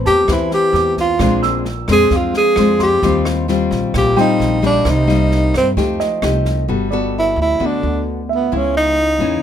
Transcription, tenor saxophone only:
0.07 0.34 G4 loud
0.33 0.53 E4 medium
0.54 0.95 G4 loud
1.00 1.41 F4 medium
1.92 2.18 G#4 loud
2.17 2.37 F4 medium
2.37 2.78 G#4 loud
2.83 3.24 G4 loud
3.97 4.17 G4 medium
4.20 4.61 D#4 loud
4.66 4.92 D4 loud
4.90 5.56 D#4 loud
5.57 5.70 C4 loud
7.19 7.38 E4 medium
7.41 7.67 E4 loud
7.66 8.09 D4 medium
8.34 8.58 B3 medium
8.56 8.76 C#4 medium
8.77 9.43 D#4 loud

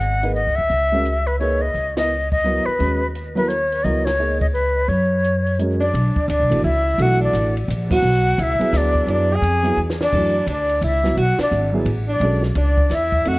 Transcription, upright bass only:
0.00 0.43 G#1 medium
0.47 0.57 C#2 medium
0.58 0.69 D2 medium
0.70 1.70 C#2 medium
1.74 2.62 C#2 medium
2.67 muted upright bass stroke soft
2.80 3.81 D#2 medium
3.84 4.85 C#2 medium
4.88 5.89 F#2 medium
5.94 6.14 B1 medium
6.16 muted upright bass stroke soft
6.28 6.41 D2 medium
6.40 6.51 B1 medium
6.52 6.63 G#1 medium
6.64 6.98 C#2 medium
6.98 7.32 B1 medium
7.33 7.67 A1 medium
7.68 8.02 A#1 medium
8.02 8.37 B1 medium
8.38 8.59 C#2 medium
8.60 muted upright bass stroke soft
8.72 9.06 D2 medium
9.07 9.41 F#2 medium
9.42 9.76 F2 medium
9.77 10.11 E2 medium
10.13 10.46 F#2 medium
10.46 10.81 D2 medium
10.82 11.16 C#2 medium
11.17 11.37 B1 medium
11.38 muted upright bass stroke soft
11.52 11.85 G#1 medium
11.86 12.20 A1 medium
12.20 12.54 B1 medium
12.55 12.89 C#2 medium
12.90 13.24 E2 medium
13.25 13.39 F2 medium

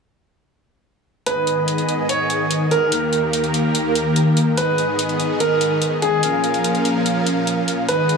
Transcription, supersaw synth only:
1.26 2.90 G#2 medium
1.26 4.54 D#3 medium
1.26 2.90 B3 medium
1.26 2.90 G#4 medium
1.26 2.90 D#5 medium
2.92 4.56 D#2 medium
2.92 4.56 A#3 medium
2.92 4.56 G4 medium
2.92 4.56 A#4 medium
4.57 6.21 G#2 medium
4.57 6.21 D#3 medium
4.57 6.21 B3 medium
4.57 6.21 G#4 medium
4.57 6.21 D#5 medium
6.23 7.87 A#2 medium
6.23 7.87 F3 medium
6.23 7.87 C#4 medium
6.23 7.87 A#4 medium
6.23 7.87 F5 medium
7.88 8.17 G#2 medium
7.88 8.17 D#3 medium
7.88 8.17 B3 medium
7.88 8.17 G#4 medium
7.88 8.17 D#5 medium

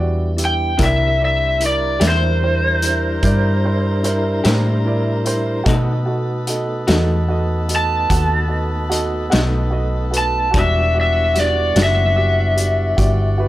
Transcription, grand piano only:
0.00 0.28 F#4 medium
0.00 0.28 G4 medium
0.00 0.29 D5 medium
0.37 0.68 E4 soft
0.37 0.68 G4 soft
0.37 0.69 E5 medium
0.78 1.09 E4 medium
0.78 1.10 A#4 medium
0.78 1.10 D5 medium
1.20 1.51 E4 medium
1.20 1.51 A#4 soft
1.20 1.51 D5 medium
1.60 1.91 E4 medium
1.60 1.92 A#4 soft
1.60 1.92 D5 soft
2.01 2.32 E4 medium
2.01 2.33 A#4 soft
2.01 2.33 E5 medium
2.42 2.73 E4 soft
2.42 2.73 A#4 soft
2.42 2.73 C5 medium
2.83 3.13 E4 soft
2.83 3.13 A#4 soft
2.83 3.14 E5 soft
3.23 3.53 E4 medium
3.23 3.54 A#4 medium
3.23 3.55 D5 medium
3.64 3.94 E4 medium
3.64 3.95 A#4 soft
3.64 3.95 C5 medium
4.03 4.34 E4 medium
4.03 4.35 A#4 medium
4.03 4.35 C5 medium
4.44 4.75 E4 medium
4.44 4.76 A#4 medium
4.44 4.76 C5 medium
4.86 5.16 E4 medium
4.86 5.16 A#4 medium
4.86 5.17 D5 medium
5.25 5.56 E4 medium
5.25 5.56 A#4 medium
5.25 5.57 C5 medium
5.64 5.96 F#4 medium
5.64 5.96 A4 medium
5.64 5.97 D#5 medium
6.06 6.37 F#4 medium
6.06 6.38 A4 medium
6.06 6.38 D#5 medium
6.47 6.78 F#4 medium
6.47 6.79 A4 medium
6.47 6.79 D#5 medium
6.88 7.19 F#4 medium
6.88 7.19 A4 medium
6.88 7.20 D#5 medium
7.28 7.59 F#4 medium
7.28 7.59 A4 medium
7.28 7.60 D#5 medium
7.68 8.00 F#4 soft
7.68 8.00 A4 soft
7.68 8.01 D#5 medium
8.10 8.41 F#4 medium
8.10 8.41 A4 medium
8.10 8.41 F#5 medium
8.48 8.80 F#4 soft
8.48 8.81 A4 soft
8.48 8.81 D#5 medium
8.90 9.21 F#4 medium
8.90 9.22 A4 medium
8.90 9.22 D#5 medium
9.30 9.62 F#4 medium
9.30 9.62 A4 medium
9.30 9.63 D#5 medium
9.70 10.02 F#4 medium
9.70 10.03 A4 medium
9.70 10.03 D#5 medium
10.11 10.43 F#4 medium
10.11 10.43 A4 medium
10.11 10.44 B4 medium
10.51 10.83 F#4 medium
10.51 10.84 G4 medium
10.51 10.84 D5 medium
10.95 11.25 F#4 medium
10.95 11.26 G4 medium
10.95 11.26 D5 medium
11.35 11.65 F#4 medium
11.35 11.66 G4 soft
11.35 11.66 D5 medium
11.75 12.06 F#4 medium
11.75 12.06 G4 medium
11.75 12.07 E5 medium
12.16 12.46 F#4 medium
12.16 12.47 G4 medium
12.16 12.47 D5 medium
12.56 12.87 F#4 soft
12.56 12.87 G4 soft
12.56 12.88 D5 medium
12.97 13.28 F#4 medium
12.97 13.28 G4 medium
12.97 13.29 D5 medium
13.38 13.48 F#4 medium
13.38 13.48 G4 medium
13.38 13.48 B4 medium

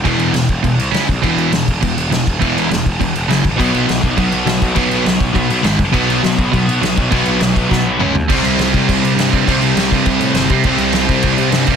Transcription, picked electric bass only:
0.05 0.16 E1 loud
0.18 0.29 E1 medium
0.33 0.44 E1 medium
0.49 0.60 E1 medium
0.64 0.74 E1 loud
0.77 0.88 C2 medium
0.92 1.03 C#2 medium
1.09 1.19 B1 medium
1.24 1.34 E1 loud
1.37 1.48 E1 medium
1.52 1.63 E1 medium
1.67 1.78 E1 medium
1.83 1.93 E1 loud
1.97 2.07 E1 medium
2.10 2.21 E1 medium
2.27 2.37 E1 medium
2.42 2.52 E1 medium
2.57 2.67 E1 medium
2.71 2.81 E1 medium
2.86 2.96 E1 loud
3.00 3.11 E1 loud
3.15 3.25 E1 medium
3.29 3.40 F#1 medium
3.45 3.55 G#1 medium
3.59 3.70 B1 medium
3.75 3.85 B1 medium
3.89 3.99 B1 medium
4.03 4.14 B1 medium
4.18 4.28 B1 medium
4.31 4.42 B1 medium
4.46 4.57 B1 medium
4.62 4.73 B1 medium
4.76 4.87 B1 medium
4.91 5.02 B1 medium
5.06 5.17 B1 loud
5.20 5.31 B1 medium
5.35 5.46 B1 loud
5.50 5.60 B1 medium
5.64 5.75 G#1 medium
5.79 5.90 F#1 medium
5.94 6.05 B1 loud
6.08 6.19 B1 medium
6.24 6.34 B1 medium
6.38 6.49 B1 medium
6.53 6.64 B1 loud
6.67 6.78 B1 medium
6.82 6.93 B1 medium
6.97 7.08 B1 medium
7.12 7.22 B1 loud
7.26 7.37 B1 medium
7.41 7.51 B1 medium
7.56 7.66 B1 loud
7.71 7.81 B1 loud
7.84 7.95 B1 medium
7.99 8.10 C#2 medium
8.13 8.24 D#2 medium
8.29 8.42 C2 loud
8.43 8.57 C2 medium
8.58 8.72 C2 loud
8.74 8.88 C2 loud
8.89 9.02 C2 loud
9.02 9.15 C3 medium
9.15 9.30 G2 medium
9.33 9.46 G2 medium
9.47 9.61 C2 loud
9.62 9.75 C2 medium
9.75 9.90 C2 loud
9.92 10.05 G2 loud
10.06 10.19 C2 loud
10.19 10.33 A2 medium
10.34 10.48 G1 medium
10.50 10.64 C3 medium
10.64 10.77 C2 loud
10.78 10.92 C2 loud
10.93 11.07 C2 medium
11.09 11.22 C2 loud
11.24 11.37 C2 loud
11.38 11.51 C3 medium
11.52 11.66 G2 medium
11.68 11.76 G2 medium

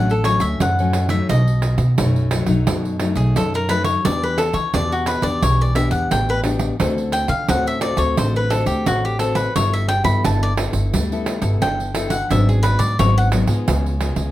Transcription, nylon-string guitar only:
0.00 0.58 D3 medium
0.00 0.12 F#3 medium
0.00 0.13 A3 medium
0.00 0.13 C#4 medium
0.25 0.72 F#3 medium
0.25 0.72 A3 medium
0.25 0.72 C#4 medium
0.61 1.27 A2 medium
0.80 1.08 F#3 medium
0.80 1.08 A3 medium
0.80 1.08 C#4 medium
1.09 1.40 F#3 medium
1.09 1.40 A3 medium
1.09 1.40 D#4 medium
1.30 1.95 B2 medium
1.99 2.64 F#2 medium
1.99 2.28 F#3 medium
1.99 2.28 A3 medium
1.99 2.28 D#4 medium
2.32 2.44 F#3 medium
2.32 2.45 A3 soft
2.32 2.45 D#4 medium
2.47 2.95 F#3 medium
2.47 2.95 A3 medium
2.47 2.95 D#4 medium
2.68 3.33 B2 medium
3.00 3.64 F#3 medium
3.00 3.65 A3 medium
3.00 3.65 D#4 medium
3.36 4.02 F#2 medium
3.69 3.99 F#3 medium
3.69 3.99 A3 medium
3.69 3.99 D#4 medium
4.05 4.71 E3 medium
4.05 4.50 B3 medium
4.05 4.50 D4 medium
4.05 4.50 G4 medium
4.74 5.40 B2 medium
4.74 5.20 B3 medium
4.74 5.20 D4 medium
4.74 5.21 G4 medium
5.23 5.70 B3 medium
5.23 5.71 D4 medium
5.23 5.71 G4 medium
5.43 6.08 E3 medium
5.76 6.40 B3 medium
5.76 6.40 D4 medium
5.76 6.40 G4 medium
6.12 6.77 B2 soft
6.45 6.74 B3 medium
6.45 6.74 D4 medium
6.45 6.75 G4 medium
6.80 7.46 D3 medium
6.80 7.25 C4 medium
6.80 7.25 F#4 medium
6.80 7.25 A4 medium
7.49 8.15 A2 medium
7.49 7.78 C4 medium
7.49 7.78 F#4 medium
7.49 7.79 A4 medium
7.82 7.93 C4 soft
7.82 7.93 F#4 soft
7.82 7.94 A4 medium
7.97 8.45 C4 medium
7.97 8.45 F#4 medium
7.97 8.46 A4 medium
8.18 8.84 D3 medium
8.51 9.15 C4 medium
8.51 9.15 F#4 medium
8.51 9.15 A4 medium
8.87 9.52 A2 soft
9.20 9.49 C4 medium
9.20 9.50 F#4 medium
9.20 9.50 A4 medium
9.55 10.21 G3 medium
9.55 9.88 B3 medium
9.55 9.88 E4 medium
9.55 9.88 A4 medium
10.04 10.52 B3 medium
10.04 10.52 E4 medium
10.04 10.52 A4 medium
10.25 10.90 D3 medium
10.57 11.04 B3 soft
10.57 11.04 E4 soft
10.57 11.04 A4 medium
10.94 11.59 G3 medium
11.12 11.40 B3 medium
11.12 11.40 E4 medium
11.12 11.40 A4 medium
11.42 11.89 B3 medium
11.42 11.90 E4 medium
11.42 11.90 A4 medium
11.62 12.27 D3 medium
11.95 12.16 B3 medium
11.95 12.16 E4 medium
11.95 12.16 A4 medium
12.31 12.96 G#2 medium
12.31 12.94 F#3 medium
12.31 12.94 B3 medium
12.31 12.94 D4 medium
12.99 13.65 G#2 medium
12.99 13.28 F#3 medium
12.99 13.28 B3 medium
12.99 13.29 D4 medium
13.32 13.45 F#3 medium
13.32 13.45 B3 medium
13.32 13.45 D4 medium
13.48 13.95 G#3 medium
13.48 13.95 B3 medium
13.48 13.95 F4 medium
13.68 14.31 C#3 medium
14.00 14.31 G#3 medium
14.00 14.31 B3 medium
14.00 14.31 F4 medium

